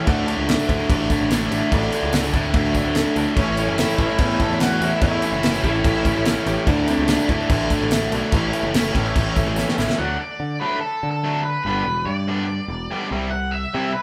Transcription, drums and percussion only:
0.07 kick, crash
0.28 crash
0.49 snare, tambourine, crash
0.59 tambourine
0.69 kick, crash
0.80 tambourine
0.90 kick, crash
1.00 tambourine
1.10 kick, tambourine, crash
1.21 tambourine
1.30 snare, tambourine, crash
1.52 tambourine, crash
1.72 kick, tambourine, crash
1.83 tambourine
1.92 tambourine, crash
2.02 tambourine
2.13 snare, tambourine, crash
2.24 tambourine
2.33 kick, crash
2.45 tambourine
2.54 kick, crash
2.65 tambourine
2.74 kick, tambourine, crash
2.85 tambourine
2.95 snare, tambourine, crash
3.16 tambourine, crash
3.37 kick, crash
3.57 tambourine, crash
3.78 snare, tambourine, crash
3.89 tambourine
3.98 kick, crash
4.10 tambourine
4.18 kick, crash
4.31 tambourine
4.40 kick, crash
4.51 tambourine
4.60 snare, tambourine, crash
4.82 tambourine, crash
5.01 kick, crash
5.22 tambourine, crash
5.43 snare, tambourine, crash
5.54 tambourine
5.64 kick, crash
5.74 tambourine
5.84 kick, crash
5.95 tambourine
6.05 kick, tambourine, crash
6.16 tambourine
6.25 snare, tambourine, crash
6.46 tambourine, crash
6.67 kick, crash
6.88 tambourine, crash
7.08 snare, tambourine, crash
7.19 tambourine
7.29 kick, crash
7.40 tambourine
7.49 kick, crash
7.60 tambourine
7.70 kick, tambourine, crash
7.91 snare, tambourine, crash
8.12 tambourine, crash
8.32 kick, crash
8.53 tambourine, crash
8.74 snare, tambourine, crash
8.84 tambourine
8.95 kick, crash
9.05 tambourine
9.16 kick, tambourine, crash
9.36 kick, tambourine, crash
9.56 snare, tambourine
9.69 snare
9.78 snare, tambourine
9.90 snare

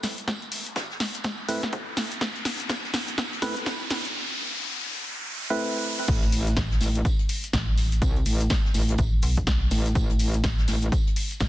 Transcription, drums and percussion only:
0.03 snare, open hi-hat, tambourine, maracas
0.18 closed hi-hat, maracas
0.28 kick, snare, closed hi-hat, tambourine, maracas
0.42 closed hi-hat
0.52 open hi-hat, tambourine, maracas
0.66 closed hi-hat, maracas
0.76 kick, snare, closed hi-hat, tambourine, maracas
0.90 snare
1.00 snare, open hi-hat, tambourine, maracas
1.14 closed hi-hat, maracas
1.24 kick, snare, closed hi-hat, tambourine, maracas
1.49 open hi-hat, tambourine, maracas
1.63 kick, snare, maracas
1.73 kick, closed hi-hat, maracas
1.97 snare, open hi-hat, tambourine, maracas
2.11 closed hi-hat, maracas
2.21 kick, snare, closed hi-hat, tambourine, maracas
2.36 closed hi-hat
2.45 snare, open hi-hat, tambourine, maracas
2.60 closed hi-hat, maracas
2.69 kick, snare, closed hi-hat, tambourine, maracas
2.85 snare
2.94 snare, open hi-hat, tambourine, maracas
3.08 closed hi-hat, maracas
3.18 kick, snare, closed hi-hat, tambourine, maracas
3.33 closed hi-hat
3.42 snare, open hi-hat, tambourine, maracas
3.56 closed hi-hat, maracas
3.66 kick, snare, closed hi-hat, tambourine, maracas
3.90 snare, open hi-hat, tambourine, maracas
4.05 closed hi-hat, maracas
6.08 kick, closed hi-hat, tambourine, crash, maracas
6.23 closed hi-hat
6.32 open hi-hat, tambourine, maracas
6.47 closed hi-hat, maracas
6.56 kick, snare, closed hi-hat, tambourine, maracas
6.71 snare
6.80 snare, open hi-hat, tambourine, maracas
6.95 closed hi-hat, maracas
7.05 kick, closed hi-hat, tambourine, maracas
7.19 closed hi-hat
7.29 open hi-hat, tambourine, maracas
7.44 closed hi-hat, maracas
7.53 kick, snare, closed hi-hat, tambourine, maracas
7.78 open hi-hat, tambourine, maracas
7.92 closed hi-hat, maracas
8.02 kick, closed hi-hat, tambourine, maracas
8.16 closed hi-hat
8.26 open hi-hat, tambourine, maracas
8.40 closed hi-hat, maracas
8.50 kick, snare, closed hi-hat, tambourine, maracas
8.65 snare
8.74 open hi-hat, tambourine, maracas
8.89 closed hi-hat, maracas
8.98 kick, closed hi-hat, tambourine, maracas
9.22 open hi-hat, tambourine, maracas
9.37 kick, closed hi-hat, maracas
9.47 kick, snare, closed hi-hat, maracas
9.71 open hi-hat, tambourine, maracas
9.86 closed hi-hat, maracas
9.95 kick, closed hi-hat, tambourine, maracas
10.10 closed hi-hat
10.19 open hi-hat, tambourine, maracas
10.34 closed hi-hat, maracas
10.44 kick, snare, closed hi-hat, tambourine, maracas
10.58 snare
10.67 snare, open hi-hat, tambourine, maracas
10.82 closed hi-hat, maracas
10.92 kick, closed hi-hat, tambourine, maracas
11.07 closed hi-hat
11.16 open hi-hat, tambourine, maracas
11.31 closed hi-hat, maracas
11.40 kick, snare, closed hi-hat, tambourine, maracas

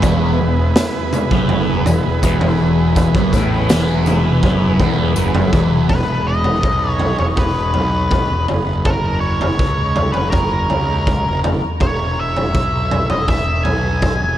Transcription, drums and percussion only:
0.02 kick, floor tom, tambourine
0.76 snare, floor tom, tambourine
1.13 mid tom, tambourine
1.31 kick
1.49 floor tom
1.86 floor tom, tambourine
2.23 kick, tambourine
2.41 floor tom
2.96 kick, floor tom, tambourine
3.15 kick
3.33 kick, tambourine
3.69 snare, floor tom, tambourine
4.06 mid tom, tambourine
4.43 kick, floor tom
4.80 kick, floor tom
5.16 tambourine
5.35 floor tom
5.53 kick, mid tom, tambourine
5.89 kick, floor tom
6.44 floor tom
6.63 kick
7.00 floor tom
7.19 floor tom
7.37 kick, floor tom
7.74 floor tom
8.11 kick, floor tom
8.48 floor tom
8.85 kick, floor tom
9.41 floor tom
9.59 kick
9.96 floor tom
10.14 floor tom
10.32 kick, floor tom
10.70 floor tom
11.07 kick, floor tom
11.44 floor tom
11.80 kick, floor tom
12.37 floor tom
12.55 kick
12.91 floor tom
13.10 floor tom
13.28 kick, floor tom
13.65 floor tom
14.02 kick, floor tom

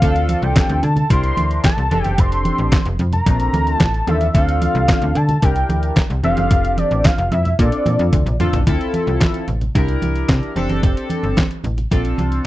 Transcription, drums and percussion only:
0.02 kick, closed hi-hat
0.16 closed hi-hat
0.29 closed hi-hat, high conga
0.42 closed hi-hat
0.56 kick, snare, clap, closed hi-hat, muted conga, high conga
0.69 closed hi-hat
0.83 closed hi-hat, low conga
0.96 closed hi-hat, low conga
1.10 kick, closed hi-hat, muted conga
1.23 closed hi-hat
1.37 closed hi-hat, high conga
1.51 closed hi-hat
1.64 kick, snare, clap, closed hi-hat, muted conga, high conga
1.78 closed hi-hat
1.91 closed hi-hat, muted conga, high conga
2.04 closed hi-hat, high conga
2.18 kick, closed hi-hat, muted conga
2.32 closed hi-hat
2.45 closed hi-hat, high conga
2.58 closed hi-hat
2.72 kick, snare, clap, closed hi-hat, high conga
2.85 closed hi-hat
2.99 closed hi-hat, muted conga, low conga
3.13 closed hi-hat, low conga
3.26 kick, closed hi-hat, muted conga
3.40 closed hi-hat
3.53 closed hi-hat, muted conga, high conga
3.67 closed hi-hat
3.80 kick, snare, clap, closed hi-hat, muted conga, high conga
3.94 closed hi-hat
4.07 closed hi-hat, muted conga, high conga
4.21 closed hi-hat, high conga
4.34 kick, closed hi-hat, muted conga
4.49 closed hi-hat
4.61 closed hi-hat, muted conga, high conga
4.75 closed hi-hat
4.89 kick, snare, clap, closed hi-hat, muted conga, high conga
5.02 closed hi-hat
5.15 closed hi-hat, muted conga, low conga
5.29 closed hi-hat, low conga
5.42 kick, closed hi-hat, muted conga
5.56 closed hi-hat
5.69 closed hi-hat, high conga
5.83 closed hi-hat
5.96 kick, snare, clap, closed hi-hat, muted conga, high conga
6.10 closed hi-hat
6.24 closed hi-hat, high conga
6.37 closed hi-hat, high conga
6.50 kick, closed hi-hat, muted conga
6.65 closed hi-hat
6.77 closed hi-hat, high conga
6.91 closed hi-hat
7.05 kick, snare, clap, closed hi-hat, high conga
7.18 closed hi-hat
7.32 closed hi-hat, low conga
7.45 closed hi-hat, low conga
7.59 kick, closed hi-hat
7.72 closed hi-hat
7.86 closed hi-hat, muted conga, high conga
7.99 closed hi-hat
8.13 kick, closed hi-hat, high tom, high conga
8.27 closed hi-hat, mid tom
8.40 closed hi-hat, mid tom, high conga
8.53 closed hi-hat, floor tom, high conga
8.67 kick, closed hi-hat
8.81 closed hi-hat
8.94 closed hi-hat, muted conga, high conga
9.07 closed hi-hat
9.21 kick, snare, clap, closed hi-hat, muted conga, high conga
9.34 closed hi-hat
9.48 closed hi-hat, low conga
9.61 closed hi-hat, low conga
9.75 kick, closed hi-hat
9.88 closed hi-hat
10.02 closed hi-hat, muted conga, high conga
10.16 closed hi-hat
10.29 kick, snare, clap, closed hi-hat, high conga
10.43 closed hi-hat
10.56 closed hi-hat, muted conga, high conga
10.69 closed hi-hat, high conga
10.83 kick, closed hi-hat, muted conga
10.97 closed hi-hat
11.10 closed hi-hat, muted conga, high conga
11.24 closed hi-hat
11.37 kick, snare, clap, closed hi-hat, muted conga, high conga
11.51 closed hi-hat
11.64 closed hi-hat, low conga
11.77 closed hi-hat, low conga
11.92 kick, closed hi-hat
12.05 closed hi-hat
12.18 closed hi-hat, high conga
12.32 closed hi-hat

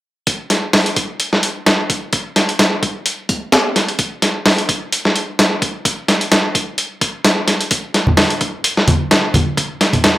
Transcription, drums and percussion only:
0.27 kick, closed hi-hat
0.50 snare, closed hi-hat
0.73 snare, open hi-hat
0.86 closed hi-hat
0.96 kick, closed hi-hat
1.20 closed hi-hat
1.33 snare
1.43 closed hi-hat
1.66 snare, closed hi-hat
1.90 kick, closed hi-hat
2.13 kick, closed hi-hat
2.36 snare, closed hi-hat
2.49 closed hi-hat
2.59 snare, closed hi-hat
2.83 kick, closed hi-hat
3.06 closed hi-hat
3.29 kick, closed hi-hat
3.52 snare, closed hi-hat
3.76 snare, closed hi-hat
3.88 closed hi-hat
3.99 kick, closed hi-hat
4.22 snare, closed hi-hat
4.46 snare, open hi-hat
4.58 closed hi-hat
4.69 kick, closed hi-hat
4.92 closed hi-hat
5.05 snare
5.16 closed hi-hat
5.39 snare, closed hi-hat
5.62 kick, closed hi-hat
5.85 kick, closed hi-hat
6.08 snare, closed hi-hat
6.21 closed hi-hat
6.32 snare, closed hi-hat
6.55 kick, closed hi-hat
6.78 closed hi-hat
7.01 kick, closed hi-hat
7.24 snare, closed hi-hat
7.48 snare, closed hi-hat
7.61 closed hi-hat
7.71 kick, closed hi-hat
7.94 snare, closed hi-hat
8.07 high conga, low conga
8.17 snare, open hi-hat
8.30 closed hi-hat
8.41 kick, closed hi-hat
8.64 closed hi-hat
8.77 snare
8.88 closed hi-hat, high conga, low conga
9.11 snare, closed hi-hat
9.34 kick, closed hi-hat, high conga, low conga
9.57 kick, closed hi-hat
9.81 snare, closed hi-hat
9.93 closed hi-hat, high conga, low conga
10.04 snare, closed hi-hat

